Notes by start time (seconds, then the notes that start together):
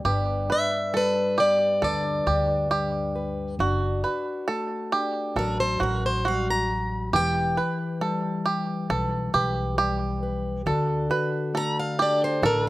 0.04 G1 G2 B3 D4 G4 B4
0.49 D4 B4 E5
0.93 G3 A4 B4
1.38 B3 G4 D5
1.82 D2 D3 A4 B4 D5
2.26 D2 D4 G4
2.71 G3 G4
3.16 B4
3.59 F#1 D4 F#4
4.04 F#4 B4
4.48 A3 A4
4.92 D4 G4
5.36 A1 F#3 F#4 A4 A#4
5.60 C5
5.80 A1 F#4 A#4
6.06 C5
6.25 G3 F#4 F5
6.51 A#5
6.70 F#3
7.13 E1 E3 G4 B4 G5
7.57 B4
8.01 G3 A4
8.46 G4
8.90 B1 B2 A4 B4
9.34 B1 G4 B4
9.78 G3 G4
10.23 B4
10.66 D2 D3 D4 F#4 A4
11.10 F#4 B4
11.54 A3 A4 A#5
11.80 F5
11.99 D4 G4 D5
12.24 C5
12.42 A1 A2 A4 A#4